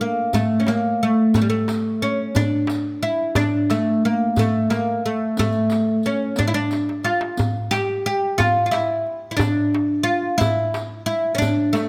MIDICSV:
0, 0, Header, 1, 4, 480
1, 0, Start_track
1, 0, Tempo, 670391
1, 969, Time_signature, 6, 3, 24, 8
1, 8512, End_track
2, 0, Start_track
2, 0, Title_t, "Oud"
2, 0, Program_c, 0, 24
2, 6, Note_on_c, 0, 58, 69
2, 243, Note_off_c, 0, 58, 0
2, 246, Note_on_c, 0, 57, 74
2, 428, Note_on_c, 0, 61, 51
2, 443, Note_off_c, 0, 57, 0
2, 483, Note_off_c, 0, 61, 0
2, 486, Note_on_c, 0, 58, 69
2, 733, Note_off_c, 0, 58, 0
2, 736, Note_on_c, 0, 57, 75
2, 962, Note_off_c, 0, 57, 0
2, 970, Note_on_c, 0, 57, 70
2, 1011, Note_off_c, 0, 57, 0
2, 1014, Note_on_c, 0, 55, 62
2, 1067, Note_off_c, 0, 55, 0
2, 1071, Note_on_c, 0, 57, 71
2, 1449, Note_on_c, 0, 61, 78
2, 1461, Note_off_c, 0, 57, 0
2, 1687, Note_off_c, 0, 61, 0
2, 1690, Note_on_c, 0, 62, 86
2, 2140, Note_off_c, 0, 62, 0
2, 2166, Note_on_c, 0, 64, 77
2, 2403, Note_off_c, 0, 64, 0
2, 2406, Note_on_c, 0, 62, 83
2, 2652, Note_on_c, 0, 57, 76
2, 2654, Note_off_c, 0, 62, 0
2, 2897, Note_off_c, 0, 57, 0
2, 2901, Note_on_c, 0, 58, 78
2, 3118, Note_off_c, 0, 58, 0
2, 3144, Note_on_c, 0, 57, 77
2, 3365, Note_off_c, 0, 57, 0
2, 3368, Note_on_c, 0, 58, 75
2, 3615, Note_off_c, 0, 58, 0
2, 3620, Note_on_c, 0, 57, 76
2, 3838, Note_off_c, 0, 57, 0
2, 3862, Note_on_c, 0, 57, 88
2, 4338, Note_on_c, 0, 61, 76
2, 4349, Note_off_c, 0, 57, 0
2, 4569, Note_off_c, 0, 61, 0
2, 4572, Note_on_c, 0, 62, 85
2, 4622, Note_off_c, 0, 62, 0
2, 4636, Note_on_c, 0, 64, 76
2, 4678, Note_off_c, 0, 64, 0
2, 4684, Note_on_c, 0, 62, 89
2, 5041, Note_off_c, 0, 62, 0
2, 5044, Note_on_c, 0, 65, 78
2, 5270, Note_off_c, 0, 65, 0
2, 5520, Note_on_c, 0, 67, 93
2, 5763, Note_off_c, 0, 67, 0
2, 5772, Note_on_c, 0, 67, 86
2, 5997, Note_off_c, 0, 67, 0
2, 6000, Note_on_c, 0, 65, 94
2, 6192, Note_off_c, 0, 65, 0
2, 6200, Note_on_c, 0, 65, 62
2, 6237, Note_off_c, 0, 65, 0
2, 6239, Note_on_c, 0, 64, 84
2, 6659, Note_off_c, 0, 64, 0
2, 6667, Note_on_c, 0, 64, 61
2, 6703, Note_off_c, 0, 64, 0
2, 6706, Note_on_c, 0, 62, 84
2, 7182, Note_off_c, 0, 62, 0
2, 7185, Note_on_c, 0, 65, 89
2, 7428, Note_off_c, 0, 65, 0
2, 7431, Note_on_c, 0, 64, 97
2, 7892, Note_off_c, 0, 64, 0
2, 7920, Note_on_c, 0, 64, 90
2, 8121, Note_off_c, 0, 64, 0
2, 8124, Note_on_c, 0, 61, 69
2, 8147, Note_off_c, 0, 61, 0
2, 8150, Note_on_c, 0, 62, 90
2, 8397, Note_on_c, 0, 57, 76
2, 8409, Note_off_c, 0, 62, 0
2, 8512, Note_off_c, 0, 57, 0
2, 8512, End_track
3, 0, Start_track
3, 0, Title_t, "Darbuka"
3, 241, Note_on_c, 9, 64, 76
3, 313, Note_off_c, 9, 64, 0
3, 477, Note_on_c, 9, 63, 64
3, 549, Note_off_c, 9, 63, 0
3, 729, Note_on_c, 9, 62, 23
3, 800, Note_off_c, 9, 62, 0
3, 963, Note_on_c, 9, 64, 84
3, 1034, Note_off_c, 9, 64, 0
3, 1203, Note_on_c, 9, 63, 63
3, 1275, Note_off_c, 9, 63, 0
3, 1688, Note_on_c, 9, 64, 83
3, 1760, Note_off_c, 9, 64, 0
3, 1914, Note_on_c, 9, 63, 67
3, 1985, Note_off_c, 9, 63, 0
3, 2168, Note_on_c, 9, 62, 24
3, 2240, Note_off_c, 9, 62, 0
3, 2400, Note_on_c, 9, 64, 111
3, 2472, Note_off_c, 9, 64, 0
3, 2647, Note_on_c, 9, 63, 62
3, 2719, Note_off_c, 9, 63, 0
3, 3129, Note_on_c, 9, 64, 87
3, 3201, Note_off_c, 9, 64, 0
3, 3372, Note_on_c, 9, 63, 61
3, 3444, Note_off_c, 9, 63, 0
3, 3624, Note_on_c, 9, 62, 25
3, 3696, Note_off_c, 9, 62, 0
3, 3863, Note_on_c, 9, 64, 84
3, 3934, Note_off_c, 9, 64, 0
3, 3981, Note_on_c, 9, 62, 24
3, 4052, Note_off_c, 9, 62, 0
3, 4095, Note_on_c, 9, 63, 58
3, 4167, Note_off_c, 9, 63, 0
3, 4339, Note_on_c, 9, 62, 26
3, 4410, Note_off_c, 9, 62, 0
3, 4579, Note_on_c, 9, 64, 83
3, 4650, Note_off_c, 9, 64, 0
3, 4817, Note_on_c, 9, 63, 51
3, 4889, Note_off_c, 9, 63, 0
3, 4935, Note_on_c, 9, 62, 52
3, 5007, Note_off_c, 9, 62, 0
3, 5047, Note_on_c, 9, 63, 60
3, 5119, Note_off_c, 9, 63, 0
3, 5162, Note_on_c, 9, 62, 82
3, 5234, Note_off_c, 9, 62, 0
3, 5294, Note_on_c, 9, 64, 91
3, 5366, Note_off_c, 9, 64, 0
3, 5530, Note_on_c, 9, 63, 70
3, 5602, Note_off_c, 9, 63, 0
3, 6013, Note_on_c, 9, 64, 90
3, 6084, Note_off_c, 9, 64, 0
3, 6252, Note_on_c, 9, 63, 71
3, 6324, Note_off_c, 9, 63, 0
3, 6491, Note_on_c, 9, 62, 23
3, 6563, Note_off_c, 9, 62, 0
3, 6726, Note_on_c, 9, 64, 105
3, 6798, Note_off_c, 9, 64, 0
3, 6977, Note_on_c, 9, 63, 68
3, 7049, Note_off_c, 9, 63, 0
3, 7454, Note_on_c, 9, 64, 88
3, 7526, Note_off_c, 9, 64, 0
3, 7692, Note_on_c, 9, 63, 69
3, 7763, Note_off_c, 9, 63, 0
3, 7932, Note_on_c, 9, 62, 22
3, 8004, Note_off_c, 9, 62, 0
3, 8175, Note_on_c, 9, 64, 73
3, 8247, Note_off_c, 9, 64, 0
3, 8411, Note_on_c, 9, 63, 61
3, 8483, Note_off_c, 9, 63, 0
3, 8512, End_track
4, 0, Start_track
4, 0, Title_t, "Riq"
4, 237, Note_on_c, 9, 54, 59
4, 309, Note_off_c, 9, 54, 0
4, 488, Note_on_c, 9, 54, 46
4, 560, Note_off_c, 9, 54, 0
4, 960, Note_on_c, 9, 54, 63
4, 1031, Note_off_c, 9, 54, 0
4, 1209, Note_on_c, 9, 54, 54
4, 1280, Note_off_c, 9, 54, 0
4, 1681, Note_on_c, 9, 54, 60
4, 1752, Note_off_c, 9, 54, 0
4, 1930, Note_on_c, 9, 54, 49
4, 2002, Note_off_c, 9, 54, 0
4, 2401, Note_on_c, 9, 54, 55
4, 2472, Note_off_c, 9, 54, 0
4, 2649, Note_on_c, 9, 54, 49
4, 2721, Note_off_c, 9, 54, 0
4, 3124, Note_on_c, 9, 54, 59
4, 3195, Note_off_c, 9, 54, 0
4, 3366, Note_on_c, 9, 54, 41
4, 3437, Note_off_c, 9, 54, 0
4, 3846, Note_on_c, 9, 54, 60
4, 3917, Note_off_c, 9, 54, 0
4, 3955, Note_on_c, 9, 54, 19
4, 4026, Note_off_c, 9, 54, 0
4, 4079, Note_on_c, 9, 54, 47
4, 4151, Note_off_c, 9, 54, 0
4, 4318, Note_on_c, 9, 54, 18
4, 4390, Note_off_c, 9, 54, 0
4, 4553, Note_on_c, 9, 54, 62
4, 4625, Note_off_c, 9, 54, 0
4, 4803, Note_on_c, 9, 54, 39
4, 4874, Note_off_c, 9, 54, 0
4, 5036, Note_on_c, 9, 54, 15
4, 5108, Note_off_c, 9, 54, 0
4, 5280, Note_on_c, 9, 54, 62
4, 5351, Note_off_c, 9, 54, 0
4, 5531, Note_on_c, 9, 54, 48
4, 5602, Note_off_c, 9, 54, 0
4, 6008, Note_on_c, 9, 54, 58
4, 6079, Note_off_c, 9, 54, 0
4, 6243, Note_on_c, 9, 54, 44
4, 6315, Note_off_c, 9, 54, 0
4, 6735, Note_on_c, 9, 54, 52
4, 6807, Note_off_c, 9, 54, 0
4, 7449, Note_on_c, 9, 54, 62
4, 7521, Note_off_c, 9, 54, 0
4, 7694, Note_on_c, 9, 54, 41
4, 7766, Note_off_c, 9, 54, 0
4, 8175, Note_on_c, 9, 54, 66
4, 8247, Note_off_c, 9, 54, 0
4, 8415, Note_on_c, 9, 54, 46
4, 8487, Note_off_c, 9, 54, 0
4, 8512, End_track
0, 0, End_of_file